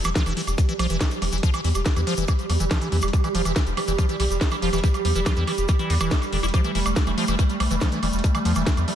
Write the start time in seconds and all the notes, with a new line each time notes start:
Already playing: G3 G4
0.04 E1 E3, closed hi-hat, high woodblock, shaker
0.15 F3, kick, snare, closed hi-hat, shaker
0.26 E1 E3, closed hi-hat, high woodblock, shaker
0.37 E3, open hi-hat
0.47 E1, closed hi-hat, high woodblock, shaker
0.58 F3, kick, closed hi-hat, shaker
0.69 E3, closed hi-hat, shaker
0.79 B1 F3, open hi-hat, high woodblock
0.90 E1 E3, closed hi-hat, shaker
1.01 E3, kick, snare, closed hi-hat, high woodblock, shaker
1.11 closed hi-hat, shaker
1.22 E1 F3, open hi-hat, high woodblock
1.32 E1 E3, closed hi-hat, shaker
1.38 closed hi-hat
1.43 F3, kick, closed hi-hat, shaker
1.54 E3, closed hi-hat, high woodblock, shaker
1.64 E2 E3, open hi-hat
1.75 E1, closed hi-hat, high woodblock, shaker
1.85 F3, kick, snare, closed hi-hat, shaker
1.96 E2 E3, closed hi-hat, high woodblock, shaker
2.07 F3, open hi-hat
2.17 E1 E3, closed hi-hat, shaker
2.28 E3, kick, closed hi-hat, high woodblock, shaker
2.39 closed hi-hat, shaker
2.50 E2 F3, open hi-hat, high woodblock
2.60 E1 E3, closed hi-hat, shaker
2.71 F3, kick, snare, closed hi-hat, high woodblock, shaker
2.81 E3, closed hi-hat, shaker
2.92 E2 E3, open hi-hat
3.02 E1, closed hi-hat, high woodblock, shaker
3.08 closed hi-hat
3.13 F3, kick, closed hi-hat, shaker
3.24 E3, closed hi-hat, high woodblock, shaker
3.35 E1 F3, open hi-hat
3.45 E1 E3, closed hi-hat, high woodblock, shaker
3.56 E3, kick, snare, closed hi-hat, shaker
3.67 E1, closed hi-hat, shaker
3.77 F3, open hi-hat, high woodblock
3.88 E1 E3, closed hi-hat, shaker
3.98 F3, kick, closed hi-hat, high woodblock, shaker
4.09 E3, closed hi-hat, shaker
4.20 B1 E3, open hi-hat, high woodblock
4.30 E1, closed hi-hat, shaker
4.41 F3, kick, snare, closed hi-hat, shaker
4.51 E3, closed hi-hat, high woodblock, shaker
4.62 E1 F3, open hi-hat
4.73 E1 E3, closed hi-hat, high woodblock, shaker
4.78 closed hi-hat
4.84 E3, kick, closed hi-hat, shaker
4.94 closed hi-hat, high woodblock, shaker
5.05 E2 F3, open hi-hat
5.15 E1 E3, closed hi-hat, shaker
5.26 F3, kick, snare, closed hi-hat, high woodblock, shaker
5.36 E2 E3, closed hi-hat, shaker
5.47 E3, open hi-hat, high woodblock
5.58 E1, closed hi-hat, shaker
5.68 F3, kick, closed hi-hat, high woodblock, shaker
5.79 E3, closed hi-hat, shaker
5.90 E2 D3, open hi-hat
6.01 E1 E3, closed hi-hat, high woodblock, shaker
6.11 B3, kick, snare, closed hi-hat, shaker
6.22 closed hi-hat, high woodblock, shaker
6.32 E1 D3, open hi-hat
6.43 E1 E4, closed hi-hat, high woodblock, shaker
6.48 closed hi-hat
6.54 F3 A3, kick, closed hi-hat, high woodblock, shaker
6.64 E3, closed hi-hat, shaker
6.75 E1 E3, open hi-hat
6.86 E1, closed hi-hat, high woodblock, shaker
6.96 F3, kick, snare, closed hi-hat, shaker
7.07 E1 E3, closed hi-hat, high woodblock, shaker
7.18 F3, open hi-hat
7.28 E1 E3, closed hi-hat, high woodblock, shaker
7.39 E3, kick, closed hi-hat, shaker
7.50 closed hi-hat, shaker
7.60 B1 F3, open hi-hat, high woodblock
7.71 E1 E3, closed hi-hat, shaker
7.81 F3, kick, snare, closed hi-hat, high woodblock, shaker
7.92 E3, closed hi-hat, shaker
8.03 E1 E3, open hi-hat, high woodblock
8.13 E1, closed hi-hat, shaker
8.19 closed hi-hat
8.24 F3, kick, closed hi-hat, shaker
8.35 E3, closed hi-hat, high woodblock, shaker
8.45 E2 F3, open hi-hat
8.55 E1 E3, closed hi-hat, high woodblock, shaker
8.67 E3, kick, snare, closed hi-hat, shaker
8.77 E2, closed hi-hat, high woodblock, shaker
8.88 F3, open hi-hat